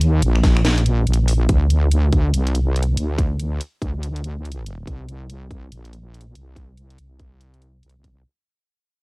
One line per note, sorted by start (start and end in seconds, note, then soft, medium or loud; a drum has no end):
0.00 0.21 D#2 medium
0.00 closed hi-hat medium
0.22 1.06 A#1 loud
0.22 closed hi-hat medium
0.36 finger snap soft
0.44 kick loud
0.44 snare medium
0.44 open hi-hat medium
0.57 finger snap medium
0.65 snare loud
0.65 closed hi-hat medium
0.78 closed hi-hat soft
0.86 closed hi-hat soft
1.07 1.48 A#1 loud
1.07 closed hi-hat soft
1.14 closed hi-hat medium
1.28 open hi-hat medium
1.49 2.32 D2 loud
1.49 kick loud
1.49 closed hi-hat medium
1.70 closed hi-hat soft
1.91 closed hi-hat medium
2.13 kick loud
2.13 closed hi-hat soft
2.34 2.96 C2 medium
2.34 closed hi-hat medium
2.47 closed hi-hat soft
2.55 closed hi-hat soft
2.76 closed hi-hat soft
2.83 closed hi-hat medium
2.97 3.59 D2 loud
2.97 closed hi-hat medium
3.18 kick loud
3.18 closed hi-hat medium
3.39 closed hi-hat soft
3.61 closed hi-hat medium
3.82 4.86 D2 medium
3.82 kick medium
3.82 closed hi-hat soft
4.03 closed hi-hat medium
4.16 closed hi-hat soft
4.24 closed hi-hat soft
4.45 closed hi-hat soft
4.52 closed hi-hat medium
4.66 closed hi-hat medium
4.87 5.71 C2 medium
4.87 kick loud
4.87 closed hi-hat medium
5.09 closed hi-hat soft
5.30 closed hi-hat medium
5.51 kick loud
5.51 closed hi-hat soft
5.72 6.34 A#1 medium
5.72 closed hi-hat medium
5.85 closed hi-hat soft
5.93 closed hi-hat soft
6.14 closed hi-hat soft
6.21 closed hi-hat medium
6.35 6.97 C2 medium
6.35 closed hi-hat medium
6.56 kick loud
6.56 closed hi-hat medium
6.78 closed hi-hat medium
6.90 closed hi-hat soft
6.98 7.82 C2 loud
6.98 closed hi-hat medium
7.20 kick loud
7.20 closed hi-hat soft
7.41 closed hi-hat medium
7.54 closed hi-hat soft
7.62 closed hi-hat soft
7.83 8.24 C2 medium
7.83 closed hi-hat soft
7.90 closed hi-hat medium
8.04 kick medium
8.04 closed hi-hat medium